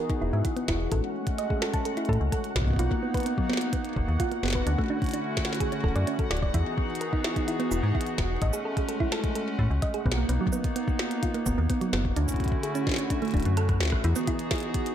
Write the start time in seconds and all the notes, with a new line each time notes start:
Already playing: E3 B3 D#4 F#4 G#4 F#5
0.10 D#4, kick, closed hi-hat
0.21 E1 E4
0.33 G#2 E5
0.45 E4, kick, closed hi-hat
0.56 B3, closed hi-hat
0.68 E1 E4, kick, snare
0.92 A1 G#3 A3 C#4 A4, kick, closed hi-hat
1.27 kick, closed hi-hat
1.38 D#5, closed hi-hat
1.50 G#4, kick
1.62 A4, snare
1.74 A5, kick, closed hi-hat
1.85 A4, closed hi-hat
1.97 E4, closed hi-hat
2.05 A2 A4, kick, closed hi-hat
2.13 closed hi-hat
2.21 C#2
2.32 A4, kick, closed hi-hat
2.44 closed hi-hat
2.56 B1 A#3 B3 D#4, kick, snare
2.59 kick
2.62 kick
2.64 kick
2.67 kick
2.70 kick
2.73 kick
2.76 B1 F4, kick, closed hi-hat
2.91 A#3, kick
3.03 B3
3.14 B4, kick, closed hi-hat
3.17 closed hi-hat
3.20 closed hi-hat
3.23 B3, closed hi-hat
3.26 closed hi-hat
3.38 F#3, kick
3.49 B3, snare
3.53 snare
3.57 snare, closed hi-hat
3.73 B3, kick, closed hi-hat
3.85 closed hi-hat
3.96 F#1, kick
4.08 D#2
4.20 F4, kick, closed hi-hat
4.32 A#3, closed hi-hat
4.43 F#1 B3, snare
4.46 snare
4.48 snare
4.50 snare
4.53 B4, kick, snare
4.67 D2 D3 A3 C#4 D4 E4 F#4, closed hi-hat
4.78 A3, kick
4.90 D4
5.02 kick, closed hi-hat
5.04 closed hi-hat
5.06 closed hi-hat
5.09 closed hi-hat
5.11 D4, closed hi-hat
5.14 closed hi-hat
5.37 kick, snare
5.45 snare
5.53 snare, closed hi-hat
5.60 G#4, kick, closed hi-hat
5.72 C#4, closed hi-hat
5.84 D1 A4, kick
5.95 F#2 D5, closed hi-hat
6.07 C#4, closed hi-hat
6.19 A4, kick, closed hi-hat
6.31 D1 D5, snare
6.37 closed hi-hat
6.42 D5, kick
6.54 E2 E3 B3 D#4 E4 F#4 G#4, kick, closed hi-hat
6.78 kick
6.95 closed hi-hat
7.01 A#4, closed hi-hat
7.13 D#4, kick
7.24 E4, snare
7.36 D#4, kick, closed hi-hat
7.48 E4, closed hi-hat
7.60 B3, closed hi-hat
7.71 E1 E4, shaker
7.83 G#2
7.95 E4, kick
8.01 closed hi-hat
8.07 closed hi-hat
8.18 E1, kick, snare
8.42 A1 G#3 A3 C#4 D#5, kick, closed hi-hat
8.53 G#4, shaker
8.65 A4
8.77 G#4, kick, closed hi-hat
8.89 A4, closed hi-hat
9.00 E4, kick
9.12 A4, snare
9.24 kick, closed hi-hat
9.35 A4, closed hi-hat
9.59 A2, kick
9.70 C#2
9.82 D#5, kick, closed hi-hat
9.94 G#4, closed hi-hat
10.06 B1 A#3 B3 D#4, kick
10.12 snare
10.17 A#3
10.29 B1 B3, closed hi-hat
10.41 F#3
10.47 kick
10.53 B3, shaker
10.64 kick, closed hi-hat
10.76 B3, closed hi-hat
10.88 kick
10.99 snare
11.11 closed hi-hat
11.23 F4, kick, closed hi-hat
11.34 A#3, closed hi-hat
11.46 F#1 B3, kick, shaker
11.58 D#2 A#3
11.70 B3, kick, closed hi-hat
11.81 F#3, closed hi-hat
11.93 F#1 B3, snare
12.05 kick
12.16 D2 D3 A3 C#4 D4 E4 F#4, closed hi-hat
12.28 kick, closed hi-hat, shaker
12.32 kick, closed hi-hat
12.36 kick, closed hi-hat
12.40 closed hi-hat
12.44 kick, closed hi-hat
12.48 kick, closed hi-hat
12.63 G#4, closed hi-hat
12.75 C#4, closed hi-hat, shaker
12.87 D4, kick, snare
12.89 snare
12.92 snare
12.94 snare
12.96 C#4, snare, closed hi-hat
13.10 D4, kick, closed hi-hat
13.22 A3, closed hi-hat
13.25 closed hi-hat
13.28 closed hi-hat
13.31 closed hi-hat
13.34 D1 D4, kick, closed hi-hat
13.37 closed hi-hat
13.40 closed hi-hat
13.43 closed hi-hat
13.45 F#2, closed hi-hat
13.57 A4, cross-stick, closed hi-hat
13.69 kick, cross-stick, closed hi-hat
13.81 D2, snare
13.83 snare
13.85 snare
13.88 snare
13.90 A1, kick, cross-stick, snare
14.04 E2 E3 B3 D#4 E4 F#4 G#4, closed hi-hat
14.16 B3, closed hi-hat, shaker
14.27 E4, kick, closed hi-hat
14.39 closed hi-hat
14.51 E4, kick, snare, closed hi-hat
14.53 closed hi-hat
14.56 closed hi-hat
14.58 closed hi-hat
14.60 closed hi-hat
14.74 kick, closed hi-hat
14.86 closed hi-hat